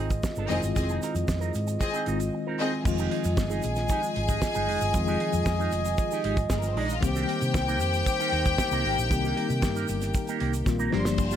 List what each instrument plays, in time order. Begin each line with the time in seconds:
Already playing: fingered electric bass G#1, tine electric piano D#3 G#3 C4 F4, clean electric guitar C4, french horn section C4 F4 G#4 D#5
0.00 clean electric guitar D#4 G#4
0.10 muted clean electric guitar stroke, kick, closed hi-hat, shaker
0.23 muted clean electric guitar stroke, kick, snare, shaker
0.36 fingered electric bass G1, clean electric guitar C4 D#4 A#4, shaker
0.49 fingered electric bass F1, tine electric piano D#3 G#3 C4 E4, string section C4 G#4 D#5, clean electric guitar C4 D#4 A#4, open hi-hat, shaker
0.58 tine electric piano F4
0.63 fingered electric bass G1, closed hi-hat, shaker
0.75 fingered electric bass F1, string section C4 G#4 D#5, muted clean electric guitar stroke, kick, closed hi-hat, shaker
0.89 clean electric guitar C4 D#4 G#4, shaker
1.02 clean electric guitar C4 D#4 A#4, closed hi-hat, shaker
1.15 fingered electric bass F2, muted clean electric guitar stroke, closed hi-hat, shaker
1.28 fingered electric bass F2, muted clean electric guitar stroke, kick, snare, shaker
1.40 clean electric guitar C4 D#4 A#4, closed hi-hat, shaker
1.54 fingered electric bass G#2, muted clean electric guitar stroke, closed hi-hat, shaker
1.67 muted clean electric guitar stroke, closed hi-hat, shaker
1.80 string section C4 G#4 D#5, muted clean electric guitar stroke, kick, closed hi-hat, shaker
1.93 clean electric guitar C4 D#4 G#4, closed hi-hat, shaker
2.06 fingered electric bass G#1, tine electric piano D#3 G#3 C4 F4, clean electric guitar C4 D#4 G#4, closed hi-hat, shaker
2.20 muted clean electric guitar stroke, closed hi-hat, shaker
2.33 muted clean electric guitar stroke
2.47 clean electric guitar C4 D#4 A#4
2.60 string section C4 G#4 D#5, clean electric guitar C4 D#4 A#4
2.73 muted clean electric guitar stroke
2.84 fingered electric bass F1, tine electric piano D#3 F3 G#3 C4 F4, french horn section G#3 F4 D#5, string section G#4 G#5, muted clean electric guitar stroke, kick, crash, shaker
2.98 clean electric guitar G#3 D#4 G4, closed hi-hat, shaker
3.11 clean electric guitar G#3 D#4 G#4, closed hi-hat
3.24 fingered electric bass F2, muted clean electric guitar stroke, closed hi-hat, shaker
3.37 fingered electric bass G1, muted clean electric guitar stroke, kick, snare, shaker
3.50 clean electric guitar G#3 D#4 G#4, shaker
3.62 fingered electric bass A#1, closed hi-hat, shaker
3.76 muted clean electric guitar stroke, snare, closed hi-hat, shaker
3.89 clean electric guitar G#3 D#4 G4, kick, closed hi-hat, shaker
4.02 muted clean electric guitar stroke, shaker
4.15 fingered electric bass G#1, muted clean electric guitar stroke, closed hi-hat
4.28 clean electric guitar G#3 D#4 G4, kick, closed hi-hat, shaker
4.41 muted clean electric guitar stroke, kick, snare, shaker
4.55 fingered electric bass G1, clean electric guitar G#3 D#4 G#4, closed hi-hat, shaker
4.68 fingered electric bass F1, clean electric guitar G#3 D#4 G#4, open hi-hat
4.81 fingered electric bass G1, muted clean electric guitar stroke, closed hi-hat, shaker
4.93 fingered electric bass F1, tine electric piano D#3 F3 G#3 C4 F4, muted clean electric guitar stroke, kick, closed hi-hat, shaker
5.07 clean electric guitar G#3 D#4 G4, shaker
5.20 clean electric guitar G#3 D#4 G#4, closed hi-hat
5.33 fingered electric bass F2, closed hi-hat, shaker
5.46 kick, snare, shaker
5.59 clean electric guitar G#3 D#4 G#4, shaker
5.72 fingered electric bass F1, muted clean electric guitar stroke, closed hi-hat, shaker
5.85 muted clean electric guitar stroke, closed hi-hat, shaker
5.98 muted clean electric guitar stroke, kick, closed hi-hat, shaker
6.11 clean electric guitar G#3 D#4 G4, shaker
6.24 fingered electric bass G#1, clean electric guitar G#3 D#4 G4, closed hi-hat
6.37 kick, closed hi-hat, shaker
6.50 fingered electric bass G1, string section G#3 G#4, kick, snare, shaker
6.60 string section A#3 A#4, muted clean electric guitar stroke, closed hi-hat, shaker
6.68 string section C4 C5
6.76 fingered electric bass A#1, clean electric guitar G#3 D#4 G#4, string section D4 D5, open hi-hat
6.85 string section D#4 D#5, muted clean electric guitar stroke
6.89 closed hi-hat, shaker
6.95 string section F4 F5
7.01 fingered electric bass C2, tine electric piano D#3 G3 A#3 C4 G4, french horn section A#3 D#4 C5, string section G4 G5, muted clean electric guitar stroke, kick, closed hi-hat, shaker
7.15 clean electric guitar A#3 D#4 G4, closed hi-hat, shaker
7.27 clean electric guitar A#3 D#4 A#4, closed hi-hat
7.40 fingered electric bass C3, muted clean electric guitar stroke, closed hi-hat, shaker
7.53 fingered electric bass C2, muted clean electric guitar stroke, kick, snare, shaker
7.67 clean electric guitar A#3 D#4 A#4, shaker
7.80 fingered electric bass F2, closed hi-hat, shaker
7.93 muted clean electric guitar stroke, closed hi-hat, shaker
8.06 muted clean electric guitar stroke, kick, closed hi-hat, shaker
8.20 clean electric guitar A#3 D#4 G4, closed hi-hat, shaker
8.32 fingered electric bass D#2, clean electric guitar A#3 D#4 G4, closed hi-hat
8.46 muted clean electric guitar stroke, kick, closed hi-hat, shaker
8.58 muted clean electric guitar stroke, kick, snare, shaker
8.71 fingered electric bass C2, clean electric guitar A#3 D#4 A#4, closed hi-hat, shaker
8.85 fingered electric bass G#1, clean electric guitar A#3 D#4 A#4, open hi-hat
8.98 fingered electric bass A#1, muted clean electric guitar stroke, closed hi-hat, shaker
9.09 fingered electric bass C2, tine electric piano D#3 G3 A#3 C4 G4, french horn section A#4, muted clean electric guitar stroke, kick, closed hi-hat, shaker
9.24 clean electric guitar A#3 D#4 G4, shaker
9.36 clean electric guitar A#3 D#4 A#4, closed hi-hat
9.49 fingered electric bass C3, muted clean electric guitar stroke, closed hi-hat, shaker
9.62 fingered electric bass G2, muted clean electric guitar stroke, kick, snare, shaker
9.75 clean electric guitar A#3 D#4 A#4, shaker
9.88 fingered electric bass G1, closed hi-hat, shaker
10.01 muted clean electric guitar stroke, snare, closed hi-hat, shaker
10.14 muted clean electric guitar stroke, kick, closed hi-hat, shaker
10.27 clean electric guitar A#3 D#4 G4, closed hi-hat, shaker
10.40 fingered electric bass C2, clean electric guitar A#3 D#4 G4, closed hi-hat
10.54 muted clean electric guitar stroke, closed hi-hat, shaker
10.66 fingered electric bass A#1, tine electric piano D#3 G3 A#3 C4 F4, muted clean electric guitar stroke, kick, snare, shaker
10.79 clean electric guitar A#3 D#4 A#4, shaker
10.92 fingered electric bass G1, tine electric piano F3 G3 A#3 D4 G4, clean electric guitar A#3 F4 A#4, french horn section A#3 F4 D5, string section C5 C6, snare
11.05 muted clean electric guitar stroke, snare, shaker
11.18 muted clean electric guitar stroke, kick, crash, shaker
11.31 clean electric guitar F4 G4, closed hi-hat, shaker